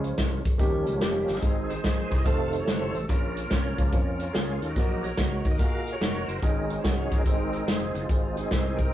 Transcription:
Already playing: C#2 C#3 F3 G#3 C#4
0.04 C5 F5, closed hi-hat
0.18 C2 A#4 D#5, kick, snare, closed hi-hat
0.45 A#1 G#4 C#5, kick, closed hi-hat
0.58 D#2 D#3 F3 G3 A#3 C#4 D#4 G4, kick, closed hi-hat
0.86 C#2, closed hi-hat
1.00 F1 A#3 C#4 D#4 G4, snare, closed hi-hat
1.28 G1, snare, closed hi-hat
1.35 C4 D#4 G#4, snare
1.42 G#1 G#2 D#3 G#3 C4 D#4 G#4, kick, closed hi-hat
1.69 D#4 G#4 C5, closed hi-hat
1.83 A#1 G#3 C4 D#4 G#4, kick, snare, closed hi-hat
2.07 B4 C5
2.12 C2, kick, closed hi-hat
2.18 D#5
2.25 F1 C3 D#3 A3 C4 D#4 F4 A4 C5 F5, kick, closed hi-hat
2.53 closed hi-hat
2.60 A4 C#5
2.68 F#1 C4 D#4 F4 C5, snare, closed hi-hat
2.94 A1 C5, closed hi-hat
3.08 A#1 A#2 A#3 C#4 F4 A#4, kick, closed hi-hat
3.37 closed hi-hat
3.50 C2 A#3 C#4 F4 A#4 C#5, kick, snare, closed hi-hat
3.77 C#2 F3 A#3 C#4, kick, closed hi-hat
3.84 A#4
3.91 F2 A#3 C#4 F4 A#4 C#5, kick, closed hi-hat
4.20 closed hi-hat
4.33 C#2 A#3 C#4 F4 G#4 A#4, snare, closed hi-hat
4.61 D#2 A4, closed hi-hat
4.67 D#4 F#4 A#4
4.75 A#1 A#2 F#3 A#3 D#4 F#4 A#4, kick, closed hi-hat
5.01 F#4 A#4 C#5, closed hi-hat
5.17 C#2 A#3 D#4 F#4 C#5, kick, snare, closed hi-hat
5.44 D#2 C#5, kick, closed hi-hat
5.51 D#5
5.58 A#2 A#3 D#4 F#4 G#4 A#4 F5, kick, closed hi-hat
5.87 closed hi-hat
5.92 F#4 A#4 C#5
6.00 F1 A#3 D#4 F#4 A#4, snare, closed hi-hat
6.26 F#1 C5, closed hi-hat
6.40 G#1 G#2 D#3 G#3 C#4 D#4 G#4 A#4, kick, closed hi-hat
6.70 closed hi-hat
6.79 G#3 C#4 C5 C#5
6.84 C2 D#4 F#4 G#4, kick, snare, closed hi-hat
7.12 A#1, kick, closed hi-hat
7.16 A#4
7.24 G#1 G#2 D#3 G#3 C4 D#4 G#4 A#4, kick, closed hi-hat
7.53 closed hi-hat
7.67 F1 G#3 C4 D#4 G#4 A#4, snare, closed hi-hat
7.95 F#1, closed hi-hat
8.01 G#3 C4 F4
8.08 G#1 G#3 C4 D#4 G#4, kick, closed hi-hat
8.36 D#3 G#3 C4 D#4 G#4, closed hi-hat
8.51 C2 G#3 C4 D#4 A#4, kick, snare, closed hi-hat
8.77 A#4, kick, closed hi-hat

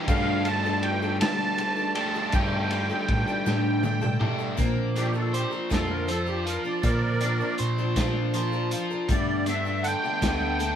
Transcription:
0.07 G2 D3 G3 A3 D4 G4 A4 F5, kick, ride
0.45 G3 D4 G4 A4 A5, ride
0.65 G3 D4 G4 A4
0.83 G5, ride
1.02 G3 D4 G4 A4
1.20 G2 D3 G3 D4 G4 A4 A5, snare, ride
1.58 G3 D4 G4 A4, ride
1.77 G3 D4 G4 A4
1.95 G3 A3 D4 G4 A5, ride
2.15 G3 D4 G4 A4
2.32 G2 D3 G3 A3 D4 G4 A4 G5, kick, ride
2.70 G3 D4 G4 A4, ride
2.90 G3 D4 G4 A4
3.08 A2, kick, ride
3.28 G3 D4 G4 A4
3.46 G2 A2 D3 G3 D4 G4 A4, snare
3.83 G3 D4 G4 A4, high tom
4.01 G3 D4 G4 A4, mid tom
4.20 G3 A3 D4 G4, mid tom
4.39 G3 D4 G4 A4
4.57 A#2 D3 F3 A#3 C4 D4 A#4, kick, closed hi-hat
4.96 F3 C4 D4 G4 A#4, closed hi-hat
5.13 F3 C4 D4 A4 A#4
5.33 G4 C5, closed hi-hat
5.51 F3 C4 D4 A#4
5.70 F2 A#2 D3 F3 C4 D4 F4 A4 A#4, kick, snare, closed hi-hat
5.90 A#4
6.08 F3 C4 D4 A4 A#4 C5, closed hi-hat
6.26 F3 C4 D4 G4 A#4
6.46 F4 A#4, closed hi-hat
6.64 F3 C4 D4 A#4 D5
6.83 A#2 D3 F3 A#3 C4 D4 A#4 D5, kick, closed hi-hat
7.21 F3 C4 D4 A#4, closed hi-hat
7.40 F3 C4 D4 A#4
7.58 A#2 C5, closed hi-hat
7.78 F3 C4 D4 A#4
7.96 A#2 D3 F3 C4 D4 F4 A#4, kick, snare, closed hi-hat
8.34 F3 C4 D4 A#4 C5, closed hi-hat
8.52 F3 C4 D4 A#4
8.71 F4, closed hi-hat
8.90 F3 C4 D4 A#4
9.09 G2 D3 G3 A3 B3 D4 G4 D5, kick, closed hi-hat
9.46 A3 B3 D4 G4 E5, closed hi-hat
9.65 A3 B3 D4 G4
9.83 A4 F#5, closed hi-hat
9.87 G5
10.04 A3 B3 D4 G4
10.21 D2 G2 D3 A3 B3 D4 G4, kick, snare, closed hi-hat
10.59 A3 B3 D4 G4 A4, closed hi-hat

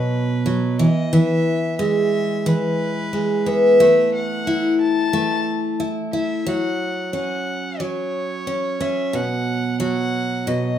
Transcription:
Already playing: B2 F#3 B4
0.46 F#3
0.79 E3 D#5
1.13 E3 E5
1.79 G#3 E5
2.46 E3 B4
3.13 G#3
3.46 B3 E5
3.80 A3
4.15 F#5
4.47 E4
4.82 A5
5.13 A3
5.80 E4
6.13 E4 E5
6.46 F#3 F#5
7.13 C#4 F#5
7.80 F#3 C#5
8.47 C#4
8.81 C#4 E5
9.13 B2 F#5
9.80 F#3 F#5
10.47 B2 D#5

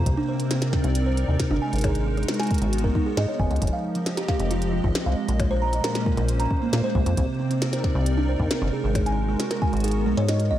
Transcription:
Already playing: C3 A#3 C5
0.06 C2, kick, closed hi-hat
0.17 C4 D4 A#4
0.28 C5
0.40 closed hi-hat
0.51 C4, cross-stick, snare, closed hi-hat
0.62 D#4 D5, snare, closed hi-hat
0.73 C4, kick, cross-stick, snare
0.84 C2 C4, closed hi-hat
0.95 closed hi-hat
1.06 C5
1.17 closed hi-hat
1.29 D#2 C3
1.40 kick, snare, closed hi-hat
1.51 G1 D4, cross-stick
1.62 G#3 G#5
1.73 G#1, closed hi-hat
1.76 closed hi-hat
1.78 closed hi-hat
1.81 closed hi-hat
1.84 G#4, kick, closed hi-hat, percussion blips
1.95 closed hi-hat
2.06 G#4
2.17 G#4, cross-stick, closed hi-hat
2.23 F#4, closed hi-hat
2.28 cross-stick, snare, closed hi-hat
2.34 closed hi-hat
2.40 G#5, snare, closed hi-hat
2.43 closed hi-hat
2.47 closed hi-hat
2.51 B3, kick, closed hi-hat
2.54 closed hi-hat
2.58 closed hi-hat
2.62 G#1 G#3, closed hi-hat
2.73 closed hi-hat
2.78 closed hi-hat
2.84 A#4, kick
2.95 D#4, kick
3.06 G#4
3.17 G#2 D#5, snare
3.28 C#5
3.40 F#1 G#5, kick
3.51 C#2 D#5, closed hi-hat
3.56 closed hi-hat
3.62 F1 F3, kick, closed hi-hat
3.67 closed hi-hat
3.73 F5
3.86 D#5
3.94 F3 C4 G4, closed hi-hat
4.06 cross-stick, snare, closed hi-hat
4.11 G#3
4.17 G4, snare, closed hi-hat
4.28 F5, kick, cross-stick, snare
4.40 F1, closed hi-hat
4.51 F4, closed hi-hat
4.62 closed hi-hat
4.73 F4
4.84 G#1 F4, kick
4.95 snare, closed hi-hat
5.06 C2 F5
5.29 A#1 F3, closed hi-hat
5.40 A#2, kick, closed hi-hat, percussion blips
5.51 C5
5.62 A#3 A#5
5.73 cross-stick, closed hi-hat
5.84 C#4 A#4, cross-stick, snare, closed hi-hat
5.95 snare, closed hi-hat
6.06 A#4 C5, kick
6.17 A#1 A#4, closed hi-hat
6.29 closed hi-hat
6.40 A#5, closed hi-hat
6.51 kick
6.62 A#3
6.73 A#2, snare, closed hi-hat
6.84 C5
6.95 C2 C3 C5, kick
7.06 F2, closed hi-hat
7.17 C2 C4, kick, closed hi-hat
7.29 C4
7.40 C4
7.51 C4, closed hi-hat
7.56 A#4
7.62 D#4, cross-stick, snare, closed hi-hat
7.73 C5 D5, snare, closed hi-hat
7.84 kick, cross-stick, snare
7.95 C2 C3
8.06 closed hi-hat
8.17 D4
8.29 C5
8.40 D#2, kick
8.51 C4, snare, closed hi-hat
8.62 G1, cross-stick
8.73 G#3 G#4
8.84 G#1 G#4
8.95 kick, closed hi-hat, percussion blips
9.06 G#5, closed hi-hat
9.17 F#4
9.29 G#3, cross-stick
9.40 cross-stick, snare, closed hi-hat
9.51 A#4, snare, closed hi-hat
9.62 B3 G#5, kick
9.73 G#1, closed hi-hat
9.77 closed hi-hat
9.80 G#4, closed hi-hat
9.84 closed hi-hat
9.88 closed hi-hat
9.91 closed hi-hat
10.06 B1 G#3
10.17 G#2 C#5, closed hi-hat
10.28 D#5, snare, closed hi-hat
10.40 closed hi-hat
10.51 G#1 D#5

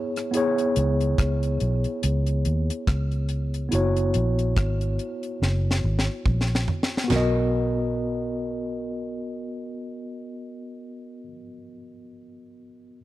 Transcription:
Already playing: B3 E4 G#4 C#5
0.16 cross-stick, closed hi-hat
0.31 B3 E4, closed hi-hat
0.35 G#4 C#5
0.58 closed hi-hat
0.76 C#2, closed hi-hat
1.01 closed hi-hat
1.18 C#2, kick, cross-stick, closed hi-hat
1.43 closed hi-hat
1.60 B1, closed hi-hat
1.84 closed hi-hat
2.03 C#2, closed hi-hat
2.26 closed hi-hat
2.45 D#2, closed hi-hat
2.70 closed hi-hat
2.87 C#2, kick, cross-stick, closed hi-hat
3.11 closed hi-hat
3.29 closed hi-hat
3.54 closed hi-hat
3.69 F#1 B3 E4, closed hi-hat
3.73 F#4 C#5
3.96 closed hi-hat
4.14 A#1, closed hi-hat
4.39 closed hi-hat
4.57 G#1, kick, cross-stick, closed hi-hat
4.81 closed hi-hat
4.99 closed hi-hat
5.23 closed hi-hat
5.42 F#1, snare
5.71 snare
5.84 G#1
5.99 snare
6.26 A#1, kick, mid tom
6.41 snare
6.55 snare
6.68 floor tom
6.83 snare
6.97 snare
7.04 B3
7.08 B1 F#4 A#4, snare, floor tom, china
7.16 D#5

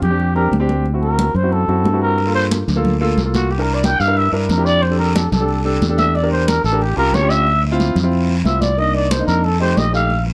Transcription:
0.02 F2 G4, high conga, low conga
0.10 C4 D4 G4
0.20 high conga
0.35 C4 D4 G4 A#4, high conga
0.51 D2, high conga
0.60 C4 D4 G4
0.69 high conga
0.85 high conga
0.93 C4 E4 F#4
1.02 A#4, high conga
1.19 high conga
1.34 F#2 C5, high conga
1.43 C4 E4 F#4
1.52 A4, high conga
1.68 F#2 C4 E4 F#4, high conga
1.84 G2, high conga
1.93 C4 E4 F#4
2.02 A#4
2.18 high conga, long guiro
2.26 A#3 F4 A4
2.35 C5, high conga
2.51 high conga, short guiro
2.68 D2, high conga, low conga, short guiro
2.76 A#3 F4 A4
2.85 high conga, low conga, long guiro
3.01 A#3 F4 A4, high conga
3.17 C2, high conga, short guiro
3.25 A#3 F4 A4
3.34 F#4, high conga, short guiro
3.51 G4, high conga, long guiro
3.58 D4 E4 A#4
3.68 high conga
3.74 D5
3.83 G5, high conga, short guiro
4.00 G2 F5, high conga, short guiro
4.07 D4 E4 A#4
4.17 E5, high conga, long guiro
4.32 G2 D4 E4 G4 A#4, high conga
4.49 F2 A#4, high conga, short guiro
4.57 D4 E4 G4
4.66 D5, short guiro
4.82 C5, high conga, long guiro
4.90 D4 G4 A4
4.98 A#4, high conga
5.16 A4, high conga, short guiro
5.32 C2 A4, high conga, low conga, short guiro
5.40 D4 G4 A4
5.48 high conga, long guiro
5.65 D4 G4 A4, high conga
5.81 E2, high conga, short guiro
5.89 D4 G4 A4
5.98 E5, high conga, short guiro
6.15 D5, high conga, long guiro
6.23 D4 G4 A#4
6.31 C5, high conga
6.48 A#4, high conga, short guiro
6.64 A1 A4, high conga, short guiro
6.72 D4 G4 A#4
6.81 G4, high conga, long guiro
6.96 C2 C#4 F4 G4 A#4, high conga
7.13 D2 C#5, high conga, short guiro
7.22 C#4 F4 G4
7.30 E5, short guiro
7.47 high conga, long guiro
7.64 high conga
7.71 C4 E4 F4
7.80 high conga, short guiro
7.95 F2, high conga, low conga, short guiro
8.03 C4 E4 F4
8.12 high conga, long guiro
8.28 high conga
8.44 C2 C4 E4 F4 E5, high conga, short guiro
8.61 D5, high conga, short guiro
8.77 A#3 D4 D#4 D#5, high conga, long guiro
8.95 D5, high conga
9.11 C5, high conga, short guiro
9.19 A#3 D4 D#4
9.27 F2 A#4, short guiro
9.44 A4, high conga, long guiro
9.59 A3 D#4 G4 C5, high conga
9.77 A#1 D#5, high conga, short guiro
9.93 A3 D#4 G4 F5, short guiro
10.10 high conga, long guiro
10.27 high conga

